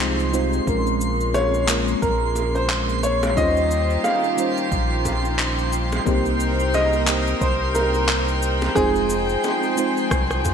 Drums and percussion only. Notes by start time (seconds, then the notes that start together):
0.00 clap, cabasa
0.19 cabasa
0.34 cabasa
0.53 cabasa
0.67 kick, cabasa
0.87 cabasa
1.01 cabasa
1.20 cabasa
1.34 high bongo, cabasa
1.54 cabasa
1.68 clap, cabasa
1.88 cabasa
2.02 kick, cabasa
2.35 high bongo, cabasa
2.55 cabasa
2.70 clap, cabasa
2.89 cabasa
3.03 cabasa
3.23 high bongo, cabasa
3.37 kick, cabasa
3.57 cabasa
3.71 cabasa
3.90 cabasa
4.04 high bongo, cabasa
4.24 cabasa
4.38 cabasa
4.57 cabasa
4.72 kick, cabasa
5.05 kick, high bongo, cabasa
5.25 cabasa
5.39 clap, cabasa
5.58 cabasa
5.73 cabasa
5.92 high bongo, cabasa
6.06 kick, cabasa
6.26 cabasa
6.40 cabasa
6.60 cabasa
6.74 high bongo, cabasa
6.93 cabasa
7.07 clap, cabasa
7.27 cabasa
7.41 kick, cabasa
7.75 high bongo, cabasa
7.94 cabasa
8.09 clap, cabasa
8.28 cabasa
8.42 cabasa
8.62 high bongo, cabasa
8.76 kick, cabasa
8.95 cabasa
9.10 cabasa
9.29 cabasa
9.44 high bongo, cabasa
9.63 cabasa
9.77 cabasa
9.97 cabasa
10.11 kick, cross-stick, cabasa
10.31 cross-stick, cabasa
10.45 kick, high bongo, cabasa